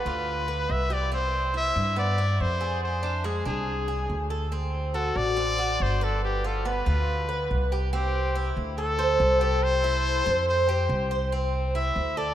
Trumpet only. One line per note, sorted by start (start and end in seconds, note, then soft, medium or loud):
0.00 0.73 B4 medium
0.71 0.94 E5 loud
0.93 1.13 D5 loud
1.14 1.52 C5 medium
1.57 1.95 E5 loud
1.99 2.42 D5 loud
2.41 2.83 C5 loud
2.84 3.27 C5 medium
3.25 3.46 G#4 medium
3.47 4.28 G#4 medium
4.94 5.18 A4 loud
5.17 5.84 D5 loud
5.82 6.05 C5 loud
6.03 6.24 A4 medium
6.25 6.48 G4 medium
6.46 6.69 A4 medium
6.67 7.72 B4 medium
7.93 8.53 G4 medium
8.78 9.65 A4 loud
9.63 10.48 C5 loud
10.49 11.08 C5 loud
11.76 12.20 E5 medium
12.18 12.34 D5 loud